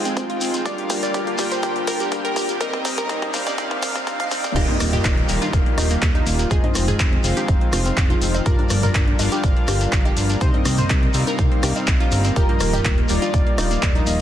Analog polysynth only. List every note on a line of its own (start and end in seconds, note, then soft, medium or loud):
0.00 0.63 G#3 medium
0.00 0.63 D#4 medium
0.00 0.63 F4 medium
0.00 0.63 C5 medium
0.00 0.63 G5 loud
0.65 1.36 G3 medium
0.65 1.36 D4 medium
0.65 1.36 F4 medium
0.65 1.36 A#4 medium
0.65 1.36 F5 loud
1.39 2.58 G3 medium
1.39 2.58 D4 medium
1.39 2.58 F4 medium
1.39 2.58 A#4 medium
1.39 2.58 G5 loud
2.61 3.31 G3 medium
2.61 3.31 C4 medium
2.61 3.31 D#4 medium
2.61 3.31 A#4 medium
2.61 3.31 D#5 loud
3.34 4.29 G3 loud
3.34 4.29 C4 medium
3.34 4.29 D#4 medium
3.34 4.29 A#4 medium
3.34 4.29 F5 loud
4.31 4.53 G3 medium
4.31 4.53 C4 medium
4.31 4.53 D#4 medium
4.31 4.53 A#4 medium
4.31 4.53 D5 medium
4.56 5.26 G3 medium
4.56 5.26 D#4 medium
4.56 5.26 F4 medium
4.56 5.26 A#4 medium
4.56 5.26 D#5 medium
5.29 6.48 G3 loud
5.29 6.48 D#4 medium
5.29 6.48 F4 medium
5.29 6.48 A#4 medium
5.29 6.48 F5 loud
6.51 7.21 G#3 medium
6.51 7.21 D#4 medium
6.51 7.21 F4 medium
6.51 7.21 C5 medium
6.51 7.21 D#5 loud
7.24 8.43 G#3 medium
7.24 8.43 D#4 medium
7.24 8.43 F4 medium
7.24 8.43 C5 medium
7.24 8.43 F5 loud
8.46 9.16 G3 medium
8.46 9.16 D4 medium
8.46 9.16 F4 medium
8.46 9.16 A#4 medium
8.46 9.16 D5 loud
9.19 10.38 G3 loud
9.19 10.38 D4 medium
9.19 10.38 F4 medium
9.19 10.38 A#4 medium
9.19 10.38 F5 loud
10.41 11.12 G3 medium
10.41 11.12 C4 medium
10.41 11.12 D#4 medium
10.41 11.12 A#4 medium
10.41 11.12 D#5 loud
11.14 12.34 G3 medium
11.14 12.34 C4 medium
11.14 12.34 D#4 medium
11.14 12.34 A#4 medium
11.14 12.34 F5 loud
12.36 13.07 G3 medium
12.36 13.07 D#4 medium
12.36 13.07 F4 medium
12.36 13.07 A#4 medium
12.36 13.07 D#5 loud
13.09 14.21 G3 medium
13.09 14.21 D#4 medium
13.09 14.21 F4 medium
13.09 14.21 A#4 medium
13.09 14.21 F5 loud